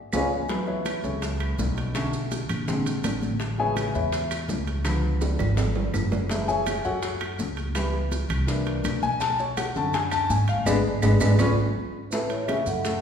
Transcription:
0.13 C#2 G#2 B3 C#4 F4 C#5 F5 G#5, low bongo, high conga, high timbale, claves, maracas
0.48 E3 F#3 A3 B3, high bongo, high conga, high timbale, maracas
0.67 E4 B4 C#5 E5, high bongo, high conga
0.85 high bongo, high conga, high timbale, claves, maracas
1.04 C#2 C#4 G#4 A4 C#5, high conga, maracas
1.22 high bongo, high conga, high timbale, maracas
1.40 high bongo, high conga, high timbale, claves
1.59 B1, high bongo, low bongo, high conga, low timbale, maracas
1.77 high bongo, high conga, high timbale, maracas
1.95 D3 A3 C#4, high bongo, high conga, high timbale, claves, maracas
2.13 high bongo, high conga, maracas
2.31 high bongo, high conga, high timbale, maracas
2.49 A#1, low conga, high timbale, claves, maracas
2.68 D3 G#3 C4, high bongo, high conga, low conga, maracas
2.86 high bongo, high conga, high timbale, maracas
3.04 A1, high bongo, low bongo, high conga, high timbale, low timbale, claves, maracas
3.22 high bongo, high conga, maracas
3.40 high bongo, high conga, high timbale, maracas
3.58 C#3 G#3 B3 G#4 C#5 E5 G#5, high bongo, high conga
3.76 high bongo, high conga, high timbale, claves, maracas
3.94 E2 E4 B4 C#5 E5, high conga, maracas
4.12 high bongo, high conga, high timbale, maracas
4.31 high bongo, high conga, high timbale, claves, maracas
4.48 C#2, high bongo, low bongo, high conga, low timbale, maracas
4.67 high bongo, high conga, high timbale, maracas
4.84 D3 F3 B3, high bongo, high conga, high timbale, claves, maracas
5.04 high bongo, high conga
5.21 high bongo, high conga, high timbale, maracas
5.39 G#1, low conga, low timbale, claves, maracas
5.57 high bongo, high conga, high timbale, maracas
5.75 high bongo, high conga, low timbale
5.93 F#1, high bongo, low bongo, high conga, low timbale, claves, maracas
6.11 high bongo, high conga, low timbale, maracas
6.30 E3 G#3 A3, high bongo, high conga, high timbale, maracas
6.48 G#4 C#5 E5 G#5, high bongo, high conga, maracas
6.66 high bongo, high conga, high timbale, claves, maracas
6.85 F#2 F#4 A4 C#5 F#5, high conga, maracas
7.03 high bongo, high conga, high timbale, maracas
7.21 high bongo, high conga, high timbale, claves
7.39 C#2, high bongo, low bongo, high conga, maracas
7.57 high bongo, high conga, high timbale, maracas
7.75 E3 G3 B3, high bongo, high conga, high timbale, claves, maracas
7.93 high bongo, high conga
8.12 high bongo, high conga, high timbale, maracas
8.29 C2, low conga, high timbale, claves, maracas
8.47 E3 A#3 D4, high bongo, high conga, maracas
8.67 high bongo, high conga, high timbale
8.84 B1, high bongo, low bongo, high conga, high timbale, claves, maracas
9.03 G#5, high bongo, high conga, maracas
9.20 A5, high bongo, high conga, high timbale, maracas
9.39 C#5, high bongo, high conga, maracas
9.57 F#5, high bongo, high conga, high timbale, claves, maracas
9.76 F#2 D3 C#4 A4 A5, high conga, maracas
9.94 G#5, high bongo, high conga, high timbale, maracas
10.11 A5, high bongo, high conga, high timbale, claves, maracas
10.30 G#2 G#5, high bongo, low bongo, high conga, maracas
10.48 F5, high bongo, high conga, high timbale, maracas
10.66 G#1 G#3 B3 D4, low bongo, high conga, high timbale, claves, maracas
11.02 G#1 G#3 B3 D4, low bongo, high conga, high timbale, claves, maracas
11.20 G#1 G#3 B3 D4, low bongo, high conga, high timbale, claves, maracas
11.39 B3 C#4 F4, low bongo, high conga, high timbale, claves, maracas
12.11 A2 E3 A3 A4 B4, high bongo, high conga, maracas
12.29 E3 C#5, high conga, high timbale, maracas
12.47 C#3 G#3 C#4 E4 E5, high bongo, high conga, high timbale, low timbale, claves, maracas
12.66 F#2 A3 F#5, maracas
12.85 A2 A3 A4, high bongo, high conga, high timbale, maracas

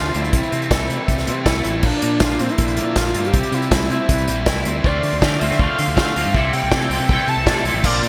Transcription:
Already playing: D2 D3 F3 A3 C4 D4 F4
0.00 F4
0.13 D2 A3 C4 D4 E4, closed hi-hat
0.24 closed hi-hat
0.32 C2 C3 E3 A3 C4, kick, closed hi-hat
0.43 closed hi-hat
0.51 C3 A3 C4, closed hi-hat
0.62 closed hi-hat
0.69 C2 E3 A3 C4 A4, kick, snare, closed hi-hat
0.89 C3 E4, closed hi-hat
1.08 C2 G3, kick, closed hi-hat
1.18 snare, closed hi-hat
1.26 C3 A3 C4, closed hi-hat
1.45 C2 E3 A3 C4 E4 A4, kick, snare, closed hi-hat
1.63 A1 A3 C4 E4, closed hi-hat
1.82 A#1 A#2 F3 A#3 D4, kick, crash
2.01 A#2 A#3 D4, closed hi-hat
2.19 A#1 F3 A#3 D4 F4, kick, snare, closed hi-hat
2.30 closed hi-hat
2.39 A#2 C4, closed hi-hat
2.49 E4, closed hi-hat
2.58 A#1 D3, kick, closed hi-hat
2.68 closed hi-hat
2.76 A#2 A#3 D4, closed hi-hat
2.95 A#1 F3 A#3 D4 F4, kick, snare, closed hi-hat
3.14 G2 A#3 C4 D4, closed hi-hat
3.24 G4, closed hi-hat
3.33 C2 C3 G3 C4 E4, kick, closed hi-hat
3.43 closed hi-hat
3.52 C3 G3 C4 E4, closed hi-hat
3.62 closed hi-hat
3.71 C2 G3 C4 E4, kick, snare, closed hi-hat
3.90 C3 C4 E4, closed hi-hat
4.09 C2 E3, kick, closed hi-hat
4.18 closed hi-hat
4.27 A#1 G3 C4 E4, closed hi-hat
4.46 C2 G3 C4 E4, kick, snare, closed hi-hat
4.57 snare
4.65 D2 C4 E4, closed hi-hat
4.83 D2 D3 F3 A3 C4 D4 F4 D5, kick
5.03 D3, open hi-hat
5.13 D2
5.21 D3 F3 A3 C4 D4 F4 D5, kick, snare
5.39 D2 D3 F3 A3 C4 D4 F4 E5, open hi-hat
5.51 D3, snare
5.59 D2 D3 F3 A3 C4 D4 F4 F5, kick
5.79 D3, open hi-hat
5.88 D2
5.95 D3 F3 A3 C4 D4 F4 F5, kick, snare
6.15 D2 D3 F3 A3 C4 D4 F4, open hi-hat
6.25 G2
6.34 C2 C3 E3 G3 A3 C4 E4 A4 E5, kick
6.53 C3 G5, open hi-hat
6.63 C2
6.71 C3 E3 G3 A3 C4 E4 A4, kick, snare
6.90 C2 C3 E3 G3 A3 C4 E4 A4, open hi-hat
7.00 C3
7.09 C2 C3 E3 G3 A3 C4 E4 A4 G5, kick
7.27 C3 A5, open hi-hat
7.37 C2
7.46 C3 E3 G3 A3 C4 E4 A4, kick, snare
7.64 C2 C3 E3 G3 A3 C4 E4, open hi-hat
7.68 A4
7.74 A1
7.83 A#1 A#2 D3 F3 A#3 C4 D4 F4 D5, kick, crash
8.02 A#2, open hi-hat

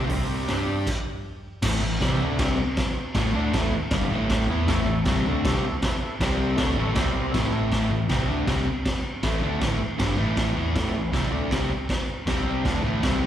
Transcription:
Already playing: C4 G4 C5
0.09 C2 C3 G3 C4 G4 C5, kick, open hi-hat
0.26 C4 G4 C5
0.44 G2 D4 G4 D5
0.48 G3 D4 G4, snare, open hi-hat
0.62 D4 G4 D5
0.87 kick, crash
1.62 A1 A2 E3 A3, kick, snare, crash
1.81 A1 A2 E3
2.00 C2 C3 G3 C4, kick, snare, crash
2.20 D2 D3 A3 D4
2.39 C2 C3 G3 C4, kick, snare, crash
2.77 kick, snare, crash
3.15 A1 A2 E3 A3, kick, snare, crash
3.33 D2 D3 A3 D4
3.53 A1 A2 E3 A3, kick, snare, crash
3.72 muted picked electric bass stroke, muted distorted electric guitar stroke
3.91 G1 G2 D3 G3, kick, snare, crash
4.09 A1 A2 E3 A3
4.30 kick, snare, crash
4.48 E2 E3 B3 E4
4.66 A1 A2 E3 A3 E4 A4 C#5, kick, snare, crash
4.85 A1 A2 E3 E4 A4 C#5
5.05 C2 C3 G3 C4 E4 A4 C#5, kick, snare, crash
5.24 D2 D3 A3 D4 E4 A4
5.29 C#5
5.44 C2 C3 G3 C4 E4 A4 C#5, kick, snare, crash
5.64 E4 A4 C#5
5.82 A4, kick, snare, crash
5.87 E4 B4
6.02 E4 A4 B4
6.20 C2 C3 G3 C4 G4 C5, kick, snare, crash
6.24 C4
6.40 C4 G4 C5
6.57 D2 D3 A3 D4 E4 A4 C#5, kick, snare, crash
6.77 A1 A2 E3 A3 E4 A4 C#5
6.95 C2 C3 G3 C4 G4 C5, kick, snare, crash
7.12 C4 G4 C5
7.31 A1 A2 E3 E4 A4 C#5, kick, snare, crash
7.35 A3
7.52 E4 A4 C#5
7.71 A1 A2 E3 A3, kick, snare, crash
7.91 A1 A2 E3
8.09 C2 C3 G3 C4, kick, snare, crash
8.27 D2 D3 A3 D4
8.46 C2 C3 G3 C4, kick, snare, crash
8.85 kick, snare, crash
9.23 A1 A2 E3 A3, kick, snare, crash
9.41 D2 D3 A3 D4
9.60 A1 A2 E3 A3, kick, snare, crash
9.79 muted distorted electric guitar stroke, muted picked electric bass stroke
9.98 G1 G2 D3 G3, kick, snare, crash
10.17 A1 A2 E3 A3
10.37 kick, snare, crash
10.55 E2 E3 B3 E4
10.75 A1 A2 E3 A3, kick, snare, crash
10.92 A1 A2 E3
11.12 C2 C3 G3 C4, kick, snare, crash
11.31 D2 D3 A3 D4
11.51 C2 C3 G3 C4, kick, snare, crash
11.89 kick, snare, crash
12.26 C2 C3 G3 C4, kick, snare, crash
12.65 D2 D3 A3 D4, kick, snare, crash
12.83 A1 A2 E3 A3
13.03 C2 C3 G3 C4, kick, snare, crash

